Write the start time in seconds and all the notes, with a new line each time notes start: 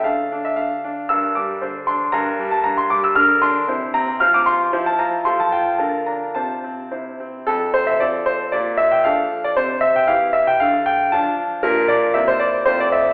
0.04 D3 D4 A4 F5
0.32 D4
0.45 E5
0.56 D3 F5
0.84 D4
1.09 G2 D4 A#4 E6
1.35 G3 D6
1.62 D3 D4 C5
1.87 D4 C6
2.12 G2 D4 A#4 A#5
2.39 G3
2.51 A5
2.64 G2 A#5
2.77 C6
2.90 G3 D6
3.04 E6
3.15 D3 D4 A#4 F6
3.42 D4 C6
3.68 C3 E4 C5
3.94 C4 A#5
4.20 F3 F4 C5 F6
4.34 D6
4.46 F4 C6
4.73 F3 E4 C5
4.86 A5
4.99 F4 A#5
5.25 F3 F4 A4 C6
5.40 A5
5.52 F4 G5
5.78 D3 F4 A#4 A5
6.06 D4 A#5
6.35 C3 F4 C5 A5
6.64 C4
6.91 C3 E4 C5
7.20 C4
7.47 F2 A4
7.74 C5
7.87 E5
8.00 F3 C4 A4 D5
8.26 C5
8.52 A#2 D5
8.77 E5
8.92 G5
9.04 F3 D4 A4 F5
9.44 D5
9.56 C3 C5
9.81 E5
9.96 G5
10.07 E3 E4 G4 F5
10.33 E5
10.47 G5
10.60 D3 F5
10.86 G5
11.12 F3 D4 F4 A5
11.63 A#2 F3 D4 F4 A#4
11.88 D5
12.14 C3 A#3 C4 E4 E5
12.28 C5
12.40 D5
12.66 F2 A3 C4 F4 C5
12.80 D5
12.92 E5